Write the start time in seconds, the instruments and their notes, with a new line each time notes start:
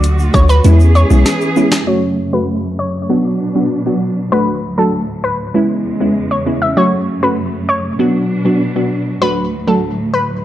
Already playing: 808-style bass D2, string section D3 A3 F#4
0.03 closed hi-hat, shaker
0.19 shaker
0.34 808-style bass D2, synth pluck F#3 A3 D4 F#4 C#5, kick, shaker
0.49 synth pluck B4, shaker
0.64 808-style bass E2, string section E3 C#4 G#4, synth pluck G#3 B3 C#4 E4, closed hi-hat, shaker
0.80 shaker
0.95 synth pluck C#5, shaker
1.10 808-style bass B1, synth pluck G#3 B3 C#4 E4, shaker
1.26 cross-stick, snare, closed hi-hat, shaker
1.41 shaker
1.56 synth pluck G#3 B3 C#4 E4, shaker
1.72 cross-stick, snare, shaker
1.87 string section F#2 C#3 A3, synth pluck F#3 A3 C#4 F#4 C#5
2.33 synth pluck F#3 A3 C#4 F#4 B4
2.79 synth pluck C#5
3.09 string section B2 F#3 D4, synth pluck F#3 B3 D4 F#4
3.55 synth pluck F#3 B3 D4 F#4
3.86 synth pluck F#3 B3 D4 F#4
4.32 string section D2 A2, synth pluck F#3 A3 D4 F#4 B4
4.78 synth pluck F#3 A3 D4 F#4 A4
5.24 synth pluck B4
5.54 string section E2 C#3 G#3, synth pluck G#3 B3 C#4 E4
6.00 synth pluck G#3 B3 C#4 E4
6.31 synth pluck C#5
6.46 synth pluck G#3 B3 C#4 E4
6.62 synth pluck E5
6.77 string section F#2 A3, synth pluck F#3 A3 C#4 F#4 C#5
7.23 synth pluck F#3 A3 C#4 F#4 B4
7.69 synth pluck C#5
7.99 string section B2 F#3 D4, synth pluck F#3 B3 D4 F#4
8.45 synth pluck F#3 B3 D4 F#4
8.76 synth pluck F#3 B3 D4 F#4
9.21 string section D2 A2, synth pluck F#3 A3 D4 F#4 B4
9.67 synth pluck F#3 A3 D4 F#4 A4
10.14 synth pluck B4